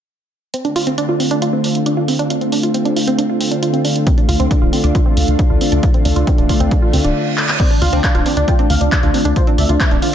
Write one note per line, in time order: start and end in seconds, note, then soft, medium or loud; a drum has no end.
0.54 0.60 C4 medium
0.54 closed hi-hat medium
0.65 0.72 D3 medium
0.65 0.72 A3 medium
0.65 0.72 C4 medium
0.65 0.69 D4 medium
0.65 0.72 F4 medium
0.65 closed hi-hat soft
0.76 0.91 D3 medium
0.76 0.91 A3 medium
0.76 0.91 C4 medium
0.76 0.82 F4 loud
0.76 0.91 F4 medium
0.76 open hi-hat loud
0.87 0.89 C4 loud
0.87 closed hi-hat medium
0.98 1.13 D3 medium
0.98 1.13 A3 medium
0.98 1.13 C4 medium
0.98 1.04 D4 medium
0.98 1.13 F4 medium
0.98 closed hi-hat medium
1.09 1.15 F4 medium
1.20 1.28 D3 medium
1.20 1.28 A3 medium
1.20 1.24 C4 medium
1.20 1.28 C4 medium
1.20 1.28 F4 medium
1.20 open hi-hat medium
1.31 1.47 D3 medium
1.31 1.47 A3 medium
1.31 1.47 C4 medium
1.31 1.35 D4 loud
1.31 1.47 F4 medium
1.31 closed hi-hat medium
1.42 1.48 F4 medium
1.42 closed hi-hat medium
1.53 1.61 D3 medium
1.53 1.61 A3 medium
1.53 1.57 C4 medium
1.53 1.61 C4 medium
1.53 1.61 F4 medium
1.64 1.80 D3 medium
1.64 1.80 A3 medium
1.64 1.80 C4 medium
1.64 1.80 F4 medium
1.64 open hi-hat loud
1.75 closed hi-hat medium
1.86 2.02 D3 medium
1.86 2.02 A3 medium
1.86 2.02 C4 medium
1.86 1.89 D4 medium
1.86 2.02 F4 medium
1.86 closed hi-hat medium
1.97 2.01 F4 medium
2.08 2.16 D3 medium
2.08 2.16 A3 medium
2.08 2.12 C4 medium
2.08 2.16 C4 medium
2.08 2.16 F4 medium
2.08 open hi-hat medium
2.19 2.27 D3 medium
2.19 2.27 A3 medium
2.19 2.27 C4 medium
2.19 2.23 D4 loud
2.19 2.27 F4 medium
2.19 closed hi-hat medium
2.30 2.36 F4 medium
2.30 closed hi-hat medium
2.41 2.49 D3 medium
2.41 2.49 A3 medium
2.41 2.47 C4 medium
2.41 2.49 C4 medium
2.41 2.49 F4 medium
2.41 closed hi-hat soft
2.52 2.68 D3 medium
2.52 2.68 A3 medium
2.52 2.68 C4 medium
2.52 2.58 D4 medium
2.52 2.68 F4 medium
2.52 open hi-hat loud
2.63 2.67 F4 medium
2.63 closed hi-hat medium
2.74 2.90 D3 medium
2.74 2.90 A3 medium
2.74 2.77 C4 medium
2.74 2.90 C4 medium
2.74 2.90 F4 medium
2.74 closed hi-hat medium
2.85 2.92 D4 medium
2.85 closed hi-hat soft
2.96 3.04 D3 medium
2.96 3.04 A3 medium
2.96 3.04 C4 medium
2.96 3.03 F4 medium
2.96 3.04 F4 medium
2.96 open hi-hat medium
3.07 3.23 D3 medium
3.07 3.23 A3 medium
3.07 3.12 C4 loud
3.07 3.23 C4 medium
3.07 3.23 F4 medium
3.07 closed hi-hat soft
3.18 3.23 D4 medium
3.18 closed hi-hat medium
3.29 3.37 D3 medium
3.29 3.37 A3 medium
3.29 3.37 C4 medium
3.29 3.36 F4 medium
3.29 3.37 F4 medium
3.40 3.56 D3 medium
3.40 3.56 A3 medium
3.40 3.47 C4 medium
3.40 3.56 C4 medium
3.40 3.56 F4 medium
3.40 open hi-hat loud
3.51 3.56 D4 medium
3.51 closed hi-hat medium
3.62 3.78 D3 medium
3.62 3.78 A3 medium
3.62 3.78 C4 medium
3.62 3.65 F4 medium
3.62 3.78 F4 medium
3.62 closed hi-hat medium
3.73 3.78 C4 medium
3.73 closed hi-hat soft
3.85 3.92 D3 medium
3.85 3.92 A3 medium
3.85 3.92 C4 medium
3.85 3.91 D4 medium
3.85 3.92 F4 medium
3.85 open hi-hat medium
3.96 4.03 D3 medium
3.96 4.03 A3 medium
3.96 4.03 C4 medium
3.96 4.03 F4 medium
3.96 closed hi-hat medium
4.07 4.13 C4 medium
4.07 kick loud
4.07 closed hi-hat medium
4.18 4.25 D3 medium
4.18 4.25 A3 medium
4.18 4.22 D4 medium
4.18 4.26 D4 medium
4.18 4.25 F4 medium
4.18 closed hi-hat soft
4.29 4.37 D2 medium
4.29 4.44 D3 medium
4.29 4.44 A3 medium
4.29 4.44 D4 medium
4.29 4.35 F4 loud
4.29 4.44 F4 medium
4.29 open hi-hat loud
4.40 4.48 D2 medium
4.40 4.42 C4 loud
4.40 closed hi-hat medium
4.51 4.66 D3 medium
4.51 4.66 A3 medium
4.51 4.66 D4 medium
4.51 4.57 D4 loud
4.51 4.66 F4 medium
4.51 kick loud
4.51 closed hi-hat medium
4.62 4.70 D1 medium
4.62 4.68 F4 medium
4.73 4.81 D3 medium
4.73 4.81 A3 medium
4.73 4.77 C4 medium
4.73 4.81 D4 medium
4.73 4.81 F4 medium
4.73 open hi-hat medium
4.84 4.92 D2 medium
4.84 4.99 D3 medium
4.84 4.99 A3 medium
4.84 4.88 D4 loud
4.84 4.99 D4 medium
4.84 4.99 F4 medium
4.84 closed hi-hat soft
4.95 5.01 F4 medium
4.95 kick loud
4.95 closed hi-hat medium
5.06 5.14 D3 medium
5.06 5.14 A3 medium
5.06 5.10 C4 medium
5.06 5.14 D4 medium
5.06 5.14 F4 medium
5.17 5.25 D2 medium
5.17 5.32 D3 medium
5.17 5.32 A3 medium
5.17 5.32 D4 medium
5.17 5.32 F4 medium
5.17 open hi-hat loud
5.28 5.36 D2 medium
5.28 closed hi-hat soft
5.39 5.54 D3 medium
5.39 5.54 A3 medium
5.39 5.54 D4 medium
5.39 5.41 D4 medium
5.39 5.54 F4 medium
5.39 kick loud
5.39 closed hi-hat medium
5.50 5.58 D2 medium
5.50 5.54 F4 medium
5.61 5.69 D3 medium
5.61 5.69 A3 medium
5.61 5.65 C4 medium
5.61 5.69 D4 medium
5.61 5.69 F4 medium
5.61 open hi-hat medium
5.72 5.80 D2 medium
5.72 5.80 D3 medium
5.72 5.80 A3 medium
5.72 5.80 D4 medium
5.72 5.76 D4 loud
5.72 5.80 F4 medium
5.72 closed hi-hat soft
5.83 5.89 F4 medium
5.83 kick loud
5.83 closed hi-hat medium
5.94 6.02 D3 medium
5.94 6.02 A3 medium
5.94 6.00 C4 medium
5.94 6.02 D4 medium
5.94 6.02 F4 medium
5.94 closed hi-hat soft
6.05 6.13 D2 medium
6.05 6.21 D3 medium
6.05 6.21 A3 medium
6.05 6.21 D4 medium
6.05 6.11 D4 medium
6.05 6.21 F4 medium
6.05 open hi-hat loud
6.16 6.24 D2 medium
6.16 6.20 F4 medium
6.16 closed hi-hat soft
6.27 6.43 D3 medium
6.27 6.43 A3 medium
6.27 6.30 C4 medium
6.27 6.43 D4 medium
6.27 6.43 F4 medium
6.27 kick loud
6.27 closed hi-hat medium
6.38 6.46 D1 medium
6.38 6.44 D4 medium
6.38 closed hi-hat soft
6.49 6.57 D3 medium
6.49 6.57 A3 medium
6.49 6.57 D4 medium
6.49 6.57 F4 medium
6.49 6.55 F4 medium
6.49 kick medium
6.49 open hi-hat medium
6.60 6.68 D2 medium
6.60 6.76 D3 medium
6.60 6.76 A3 medium
6.60 6.64 C4 loud
6.60 6.76 D4 medium
6.60 6.76 F4 medium
6.60 closed hi-hat soft
6.71 6.75 D4 medium
6.71 kick loud
6.71 closed hi-hat medium
6.71 reverse cymbal medium
6.82 6.90 D3 medium
6.82 6.90 A3 medium
6.82 6.90 D4 medium
6.82 6.90 F4 medium
6.82 6.89 F4 medium
6.93 7.01 D2 medium
6.93 7.09 D3 medium
6.93 7.09 A3 medium
6.93 7.00 C4 medium
6.93 7.09 D4 medium
6.93 7.09 F4 medium
6.93 open hi-hat loud
7.04 7.13 D1 medium
7.04 7.09 D4 medium
7.04 closed hi-hat soft
7.38 clap medium
7.49 clap loud
7.60 7.66 C4 medium
7.60 7.69 D5 loud
7.60 kick loud
7.60 closed hi-hat medium
7.60 crash medium
7.71 7.78 D3 medium
7.71 7.78 A3 medium
7.71 7.78 C4 medium
7.71 7.75 D4 medium
7.71 7.80 D4 medium
7.71 7.79 F4 medium
7.71 closed hi-hat soft
7.82 7.90 D2 medium
7.82 7.97 D3 medium
7.82 7.97 A3 medium
7.82 7.97 C4 medium
7.82 7.97 F4 medium
7.82 7.88 F4 loud
7.82 7.91 F5 medium
7.82 open hi-hat loud
7.93 8.01 D2 medium
7.93 7.95 C4 loud
7.93 8.03 D4 medium
7.93 closed hi-hat medium
8.04 8.19 D3 medium
8.04 8.19 A3 medium
8.04 8.19 C4 medium
8.04 8.10 D4 loud
8.04 8.19 F4 medium
8.04 8.14 F5 medium
8.04 kick loud
8.04 clap loud
8.04 closed hi-hat medium
8.15 8.23 D1 medium
8.15 8.25 D4 medium
8.15 8.21 F4 medium
8.15 closed hi-hat soft
8.26 8.34 D3 medium
8.26 8.34 A3 medium
8.26 8.30 C4 medium
8.26 8.34 C4 medium
8.26 8.36 D4 medium
8.26 8.34 F4 medium
8.26 open hi-hat medium
8.37 8.45 D2 medium
8.37 8.52 D3 medium
8.37 8.52 A3 medium
8.37 8.52 C4 medium
8.37 8.41 D4 loud
8.37 8.47 D4 medium
8.37 8.52 F4 medium
8.37 closed hi-hat medium
8.48 8.54 F4 medium
8.48 8.58 G5 medium
8.48 kick loud
8.48 closed hi-hat medium
8.59 8.67 D3 medium
8.59 8.67 A3 medium
8.59 8.67 C4 medium
8.59 8.63 C4 medium
8.59 8.69 D4 medium
8.59 8.67 F4 medium
8.59 closed hi-hat soft
8.70 8.78 D2 medium
8.70 8.85 D3 medium
8.70 8.85 A3 loud
8.70 8.85 C4 medium
8.70 8.85 F4 medium
8.70 8.80 F5 medium
8.70 open hi-hat loud
8.81 8.89 D2 medium
8.81 8.91 D4 medium
8.81 closed hi-hat medium
8.92 9.07 D3 medium
8.92 9.07 A3 medium
8.92 9.07 C4 medium
8.92 8.95 D4 medium
8.92 9.07 F4 medium
8.92 9.02 D5 medium
8.92 kick loud
8.92 clap loud
8.92 closed hi-hat medium
9.03 9.11 D2 medium
9.03 9.13 D4 medium
9.03 9.07 F4 medium
9.03 closed hi-hat soft
9.14 9.22 D3 medium
9.14 9.22 A3 medium
9.14 9.22 C4 medium
9.14 9.18 C4 medium
9.14 9.24 D4 medium
9.14 9.22 F4 medium
9.14 open hi-hat medium
9.25 9.33 D2 medium
9.25 9.33 D3 medium
9.25 9.33 A3 medium
9.25 9.33 C4 medium
9.25 9.29 D4 loud
9.25 9.35 D4 medium
9.25 9.33 F4 medium
9.25 closed hi-hat medium
9.36 9.42 F4 medium
9.36 9.46 C5 loud
9.36 kick loud
9.36 closed hi-hat medium
9.47 9.55 D3 medium
9.47 9.55 A3 medium
9.47 9.55 C4 medium
9.47 9.53 C4 medium
9.47 9.57 D4 medium
9.47 9.55 F4 medium
9.47 closed hi-hat soft
9.58 9.66 D2 medium
9.58 9.73 D3 medium
9.58 9.73 A3 medium
9.58 9.73 C4 medium
9.58 9.64 D4 medium
9.58 9.73 F4 medium
9.58 9.68 E5 medium
9.58 open hi-hat loud
9.69 9.77 D2 medium
9.69 9.79 D4 medium
9.69 9.73 F4 medium
9.69 closed hi-hat medium
9.80 9.96 D3 medium
9.80 9.96 A3 medium
9.80 9.96 C4 medium
9.80 9.83 C4 medium
9.80 9.96 F4 medium
9.80 9.90 E5 loud
9.80 kick loud
9.80 clap loud
9.80 closed hi-hat medium
9.91 9.99 D1 medium
9.91 9.97 D4 medium
9.91 10.01 D4 medium
9.91 closed hi-hat soft
10.02 10.10 D3 medium
10.02 10.10 A3 medium
10.02 10.10 C4 medium
10.02 10.12 D4 medium
10.02 10.10 F4 medium
10.02 10.08 F4 medium
10.02 open hi-hat medium